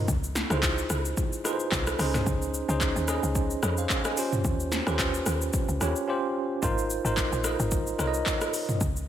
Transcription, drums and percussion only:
0.08 kick loud
0.08 shaker medium
0.24 shaker medium
0.35 snare medium
0.35 shaker medium
0.50 cross-stick loud
0.50 shaker medium
0.63 kick loud
0.63 clap loud
0.63 shaker medium
0.78 shaker medium
0.90 cross-stick medium
0.90 shaker loud
1.05 shaker medium
1.17 kick loud
1.17 shaker medium
1.33 shaker medium
1.45 cross-stick medium
1.45 shaker medium
1.60 shaker medium
1.72 kick loud
1.72 clap loud
1.72 shaker medium
1.87 cross-stick loud
1.87 shaker medium
1.99 cross-stick loud
1.99 open hi-hat medium
1.99 shaker medium
2.14 cross-stick medium
2.14 snare medium
2.14 mid tom loud
2.14 shaker medium
2.26 kick loud
2.26 shaker loud
2.42 shaker medium
2.54 shaker medium
2.69 shaker medium
2.81 kick loud
2.81 clap loud
2.81 shaker medium
2.96 shaker medium
3.08 cross-stick medium
3.08 shaker loud
3.23 shaker medium
3.35 kick loud
3.35 shaker medium
3.50 shaker medium
3.63 cross-stick loud
3.63 shaker loud
3.77 shaker medium
3.90 kick medium
3.90 clap loud
3.90 shaker medium
4.05 cross-stick loud
4.05 shaker medium
4.17 open hi-hat medium
4.17 shaker loud
4.33 mid tom loud
4.33 shaker medium
4.44 kick loud
4.44 shaker medium
4.60 shaker medium
4.72 snare medium
4.72 shaker medium
4.87 cross-stick loud
4.87 shaker medium
4.99 kick loud
4.99 clap loud
4.99 shaker medium
5.14 shaker medium
5.26 cross-stick medium
5.26 shaker loud
5.42 shaker medium
5.53 kick loud
5.53 shaker medium
5.69 shaker medium
5.81 cross-stick medium
5.81 shaker medium
5.96 shaker medium
6.63 kick loud
6.63 shaker medium
6.78 shaker medium
6.90 shaker medium
7.05 shaker medium
7.17 kick loud
7.17 clap loud
7.17 shaker medium
7.33 shaker medium
7.44 cross-stick medium
7.44 shaker loud
7.60 shaker medium
7.71 kick loud
7.71 shaker medium
7.87 shaker medium
7.99 cross-stick medium
7.99 shaker medium
8.14 shaker medium
8.26 kick medium
8.26 clap loud
8.26 shaker medium
8.41 cross-stick loud
8.41 shaker medium
8.54 open hi-hat medium
8.54 shaker medium
8.69 mid tom loud
8.69 shaker medium
8.81 kick loud
8.81 shaker medium
8.96 shaker medium

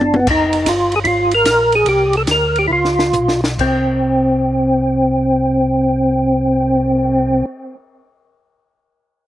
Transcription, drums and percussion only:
0.01 high tom medium
0.14 high tom medium
0.27 kick medium
0.27 crash medium
0.53 ride soft
0.66 kick soft
0.66 snare medium
0.66 hi-hat pedal soft
0.66 ride medium
0.92 ride soft
1.05 kick soft
1.05 ride soft
1.31 ride soft
1.45 kick soft
1.45 snare medium
1.45 hi-hat pedal medium
1.45 ride medium
1.72 ride soft
1.86 kick soft
1.86 ride soft
2.13 ride soft
2.27 kick soft
2.27 snare medium
2.27 hi-hat pedal soft
2.27 ride medium
2.56 ride soft
2.85 snare soft
2.99 snare medium
3.13 floor tom medium
3.13 hi-hat pedal soft
3.28 snare medium
3.44 snare medium
3.59 kick soft
3.59 crash soft
3.89 cymbal swell soft

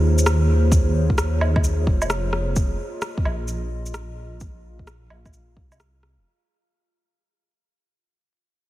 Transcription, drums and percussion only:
0.19 shaker medium
0.26 cross-stick loud
0.26 shaker medium
0.72 kick loud
0.72 shaker medium
1.10 kick medium
1.18 cross-stick loud
1.18 shaker medium
1.41 low woodblock medium
1.56 kick loud
1.56 low woodblock soft
1.64 shaker medium
1.87 kick loud
2.02 low woodblock medium
2.02 shaker medium
2.10 cross-stick loud
2.10 shaker medium
2.33 cross-stick medium
2.56 kick loud
2.56 shaker medium
3.02 cross-stick loud
3.02 shaker medium
3.18 kick loud
3.25 low woodblock soft
3.48 shaker medium
3.86 shaker medium
3.94 cross-stick loud
3.94 shaker medium
4.40 kick loud
4.40 shaker medium
4.79 kick medium
4.87 cross-stick loud
4.87 shaker soft
5.10 low woodblock soft
5.26 kick loud
5.26 low woodblock soft
5.26 shaker soft
5.33 shaker medium
5.57 kick loud
5.72 low woodblock soft
5.72 shaker soft
5.80 cross-stick medium
5.80 shaker soft
6.03 cross-stick medium

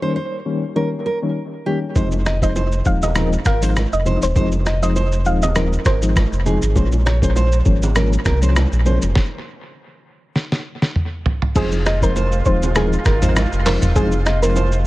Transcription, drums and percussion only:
1.96 kick loud
1.96 low conga medium
1.96 shaker medium
2.12 high bongo medium
2.12 shaker soft
2.26 finger snap medium
2.26 cross-stick medium
2.26 low bongo medium
2.26 shaker soft
2.42 kick medium
2.42 shaker medium
2.56 high bongo medium
2.56 shaker medium
2.72 shaker soft
2.85 kick medium
2.85 shaker soft
3.02 low bongo medium
3.02 shaker medium
3.15 finger snap medium
3.15 cross-stick medium
3.15 low conga medium
3.15 shaker medium
3.33 shaker medium
3.45 finger snap medium
3.45 kick medium
3.45 cross-stick loud
3.45 low bongo medium
3.45 shaker medium
3.62 shaker loud
3.76 finger snap medium
3.76 cross-stick medium
3.76 high bongo medium
3.76 shaker medium
3.93 shaker soft
4.06 low conga medium
4.06 shaker medium
4.22 shaker medium
4.36 kick loud
4.36 low conga medium
4.36 shaker medium
4.52 high bongo medium
4.52 shaker medium
4.66 finger snap medium
4.66 cross-stick medium
4.66 low bongo medium
4.66 shaker medium
4.83 shaker medium
4.96 high bongo medium
4.96 shaker medium
5.12 shaker soft
5.25 shaker medium
5.42 low bongo medium
5.42 shaker medium
5.55 finger snap medium
5.55 cross-stick medium
5.55 low conga medium
5.55 shaker medium
5.73 shaker medium
5.85 finger snap medium
5.85 kick medium
5.85 cross-stick loud
5.85 low bongo medium
5.85 shaker medium
6.02 shaker loud
6.16 finger snap medium
6.16 kick medium
6.16 cross-stick medium
6.16 high bongo medium
6.16 shaker medium
6.33 shaker soft
6.46 low conga medium
6.46 shaker medium
6.62 shaker medium
6.75 kick loud
6.75 low conga medium
6.75 shaker medium
6.92 high bongo medium
6.92 shaker medium
7.06 finger snap medium
7.06 cross-stick medium
7.06 low bongo medium
7.06 shaker soft
7.22 kick medium
7.22 shaker medium
7.36 high bongo medium
7.36 shaker medium
7.52 shaker soft
7.65 kick loud
7.65 shaker medium
7.82 low bongo medium
7.82 shaker medium
7.95 finger snap medium
7.95 cross-stick medium
7.95 low conga medium
7.95 shaker medium
8.13 shaker medium
8.25 finger snap medium
8.25 kick medium
8.25 cross-stick loud
8.25 low bongo medium
8.25 shaker medium
8.42 shaker loud
8.56 finger snap medium
8.56 cross-stick medium
8.56 high bongo medium
8.56 shaker medium
8.72 shaker soft
8.86 low conga medium
8.86 shaker medium
9.02 shaker medium
9.15 kick loud
9.15 snare medium
10.36 snare medium
10.52 snare medium
10.82 snare medium
10.96 mid tom medium
11.26 floor tom loud
11.42 floor tom loud
11.56 kick loud
11.56 crash loud
11.56 low conga medium
11.56 shaker medium
11.72 high bongo medium
11.72 shaker medium
11.86 finger snap medium
11.86 cross-stick medium
11.86 low bongo medium
11.86 shaker soft
12.02 kick medium
12.02 shaker medium
12.16 high bongo medium
12.16 shaker medium
12.32 shaker medium
12.45 kick medium
12.45 shaker medium
12.62 low bongo medium
12.62 shaker medium
12.75 finger snap medium
12.75 cross-stick medium
12.75 low conga medium
12.75 shaker medium
12.93 shaker medium
13.05 finger snap medium
13.05 kick loud
13.05 cross-stick loud
13.05 low bongo medium
13.05 shaker medium
13.22 mid tom loud
13.22 shaker loud
13.36 finger snap medium
13.36 cross-stick loud
13.36 high bongo medium
13.36 shaker medium
13.52 shaker soft
13.66 clap medium
13.66 open hi-hat medium
13.66 high bongo medium
13.66 low conga medium
13.66 shaker medium
13.82 mid tom loud
13.82 shaker loud
13.96 kick loud
13.96 low conga medium
13.96 shaker medium
14.12 high bongo medium
14.12 shaker medium
14.26 finger snap medium
14.26 cross-stick medium
14.26 low bongo medium
14.26 shaker soft
14.43 shaker medium
14.56 high bongo medium
14.56 shaker medium
14.72 shaker medium

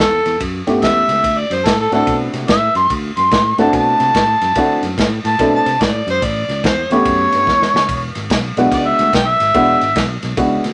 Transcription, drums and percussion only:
0.00 snare loud
0.25 snare soft
0.25 ride medium
0.40 kick medium
0.40 ride medium
0.67 snare soft
0.67 ride medium
0.82 kick medium
0.82 snare loud
0.82 ride medium
1.09 snare soft
1.09 ride medium
1.24 kick medium
1.24 ride medium
1.51 snare soft
1.51 ride medium
1.66 kick medium
1.66 snare loud
1.66 ride medium
1.92 snare soft
1.92 ride medium
2.07 kick medium
2.07 ride medium
2.33 snare soft
2.33 ride medium
2.48 kick medium
2.48 snare loud
2.48 ride medium
2.75 snare soft
2.75 ride medium
2.90 kick medium
2.90 ride medium
3.17 snare soft
3.17 ride medium
3.32 kick medium
3.32 snare loud
3.32 ride medium
3.58 snare soft
3.58 ride medium
3.73 kick medium
3.73 ride medium
4.00 snare soft
4.00 ride medium
4.15 kick medium
4.15 snare medium
4.15 ride medium
4.42 snare soft
4.42 ride medium
4.55 kick medium
4.55 snare soft
4.55 ride medium
4.83 snare soft
4.83 ride medium
4.98 kick medium
4.98 snare loud
4.98 ride medium
5.25 snare soft
5.25 ride medium
5.39 kick medium
5.39 snare soft
5.39 ride medium
5.66 snare soft
5.66 ride medium
5.81 kick medium
5.81 snare loud
5.81 ride medium
6.08 snare soft
6.08 ride medium
6.22 kick medium
6.22 ride medium
6.49 snare soft
6.49 ride medium
6.64 kick medium
6.64 snare loud
6.64 ride medium
6.91 snare soft
6.91 ride medium
7.05 kick medium
7.05 ride medium
7.32 snare soft
7.32 ride medium
7.47 kick medium
7.47 snare medium
7.62 snare medium
7.76 snare loud
7.89 kick medium
7.89 ride medium
8.15 snare soft
8.15 ride medium
8.30 kick medium
8.30 snare loud
8.30 ride medium
8.57 snare soft
8.57 ride medium
8.72 kick medium
8.72 snare soft
8.72 ride medium
8.99 snare soft
8.99 ride medium
9.13 kick medium
9.13 snare loud
9.13 ride medium
9.40 snare soft
9.40 ride medium
9.54 kick medium
9.54 ride medium
9.81 snare soft
9.81 ride medium
9.96 kick medium
9.96 snare loud
9.96 ride medium
10.23 snare soft
10.23 ride medium
10.37 kick medium
10.37 ride medium
10.64 snare soft
10.64 ride medium

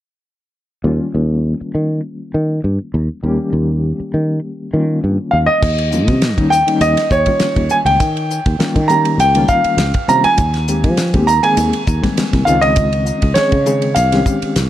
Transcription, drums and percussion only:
5.63 kick medium
5.63 crash medium
5.78 ride medium
5.92 hi-hat pedal medium
6.08 kick medium
6.08 ride medium
6.22 snare loud
6.22 hi-hat pedal medium
6.22 ride medium
6.38 kick medium
6.38 ride soft
6.52 hi-hat pedal medium
6.68 ride medium
6.81 hi-hat pedal medium
6.81 ride medium
6.97 snare soft
6.97 ride medium
7.10 kick medium
7.10 hi-hat pedal medium
7.26 kick medium
7.26 ride medium
7.40 snare medium
7.40 hi-hat pedal medium
7.40 ride medium
7.56 kick medium
7.56 ride medium
7.69 hi-hat pedal medium
7.86 ride medium
8.00 kick medium
8.00 hi-hat pedal medium
8.00 ride medium
8.17 ride soft
8.30 hi-hat pedal medium
8.46 kick medium
8.46 ride medium
8.60 snare medium
8.60 hi-hat pedal medium
8.60 ride medium
8.76 kick medium
8.76 ride medium
8.89 hi-hat pedal medium
9.05 ride medium
9.20 hi-hat pedal medium
9.20 ride medium
9.35 ride medium
9.48 kick medium
9.48 hi-hat pedal medium
9.64 ride soft
9.78 snare medium
9.78 hi-hat pedal medium
9.78 ride medium
9.94 kick medium
9.94 ride soft
10.09 hi-hat pedal medium
10.24 ride medium
10.38 kick loud
10.38 hi-hat pedal medium
10.38 ride medium
10.54 snare soft
10.54 ride soft
10.68 hi-hat pedal medium
10.84 kick medium
10.84 ride medium
10.97 snare loud
10.97 hi-hat pedal medium
10.97 ride medium
11.14 kick medium
11.14 ride medium
11.28 hi-hat pedal medium
11.44 ride medium
11.57 hi-hat pedal medium
11.57 ride medium
11.73 ride medium
11.87 kick medium
11.87 hi-hat pedal medium
12.04 kick medium
12.04 snare soft
12.04 ride medium
12.17 snare medium
12.17 hi-hat pedal medium
12.17 ride medium
12.33 kick medium
12.33 snare soft
12.33 ride medium
12.47 hi-hat pedal medium
12.62 ride medium
12.76 kick loud
12.76 hi-hat pedal medium
12.76 ride medium
12.93 ride medium
13.06 hi-hat pedal medium
13.22 kick medium
13.22 ride medium
13.35 snare medium
13.35 hi-hat pedal medium
13.35 ride medium
13.52 kick medium
13.52 ride medium
13.66 hi-hat pedal medium
13.82 ride medium
13.96 hi-hat pedal medium
13.96 ride medium
14.12 snare soft
14.12 ride medium
14.26 kick medium
14.26 hi-hat pedal medium
14.42 ride medium
14.56 snare medium
14.56 hi-hat pedal medium
14.56 ride medium

